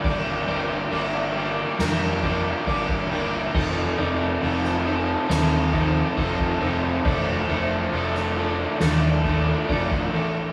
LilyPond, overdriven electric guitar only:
\new Staff \with { instrumentName = "Overdriven electric guitar" } { \time 4/4 \key f \mixolydian \tempo 4 = 68 <g bes d' g'>8 <g bes d' g'>8 <g bes d' g'>8 <g bes d' g'>8 <g bes d' g'>8 <g bes d' g'>8 <g bes d' g'>8 <g bes d' g'>8 | <f c' ees' a'>8 <f c' ees' a'>8 <f c' ees' a'>8 <f c' ees' a'>8 <f c' ees' a'>8 <f c' ees' a'>8 <f c' ees' a'>8 <f c' ees' a'>8 | <f a d' a'>8 <f a d' a'>8 <f a d' a'>8 <f a d' a'>8 <f a d' a'>8 <f a d' a'>8 <f a d' a'>8 <f a d' a'>8 | }